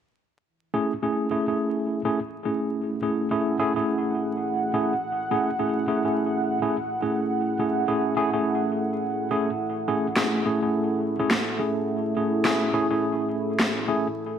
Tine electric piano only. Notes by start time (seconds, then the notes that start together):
0.74 A3 C#4 E4 G#4
1.03 A3 C#4 E4 G#4
1.31 A3 C#4 E4 G#4
1.48 A3 C#4 E4 G#4
2.05 A3 C#4 E4 G#4
2.45 A3 C#4 E4 G#4
3.02 A3 C#4 E4 G#4
3.31 A3 C#4 E4 G#4
3.59 A3 C#4 E4 G#4
3.76 A3 C#4 E4 G#4
4.74 A3 C#4 E4 G#4
5.31 A3 C#4 E4 G#4
5.59 A3 C#4 E4 G#4
5.88 A3 C#4 E4 G#4
6.05 A3 C#4 E4 G#4
6.62 A3 C#4 E4 G#4
7.02 A3 C#4 E4 G#4
7.59 A3 C#4 E4 G#4
7.88 A3 C#4 E4 G#4
8.17 A3 C#4 E4 G#4
8.33 A3 C#4 E4 G#4
9.31 A3 C#4 E4 G#4
9.88 A3 C#4 E4 G#4
10.17 A3 C#4 E4 G#4
10.45 A3 C#4 E4 G#4
10.62 A3 C#4 E4 G#4
11.20 A3 C#4 E4 G#4
11.59 A3 C#4 E4 G#4
12.17 A3 C#4 E4 G#4
12.45 A3 C#4 E4 G#4
12.74 A3 C#4 E4 G#4
12.91 A3 C#4 E4 G#4
13.88 A3 C#4 E4 G#4